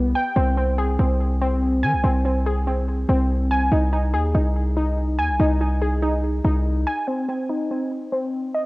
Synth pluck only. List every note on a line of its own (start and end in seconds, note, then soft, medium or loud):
0.00 0.36 B3 loud
0.00 0.36 G4 medium
0.15 0.36 G5 medium
0.36 0.56 C4 medium
0.57 0.98 C4 medium
0.78 2.04 G#4 medium
1.00 1.40 C4 medium
1.41 2.02 C4 medium
1.83 3.09 G#5 medium
2.04 2.24 C4 medium
2.25 2.66 C4 medium
2.46 3.72 G#4 medium
2.67 3.08 C4 medium
3.09 3.72 C4 medium
3.51 3.72 G#5 medium
3.72 3.92 D#4 medium
3.93 4.33 D#4 medium
4.14 5.40 G#4 medium
4.35 4.75 D#4 medium
4.77 5.39 D#4 medium
5.19 6.45 G#5 loud
5.40 5.60 D#4 loud
5.61 6.01 D#4 medium
5.82 7.07 G#4 medium
6.02 6.44 D#4 medium
6.45 7.08 D#4 medium
6.87 7.08 G#5 medium
7.08 7.27 C4 medium
7.28 7.70 C4 medium
7.49 8.66 D#4 medium
7.71 8.11 C4 medium
8.12 8.66 C4 medium
8.54 8.66 D#5 medium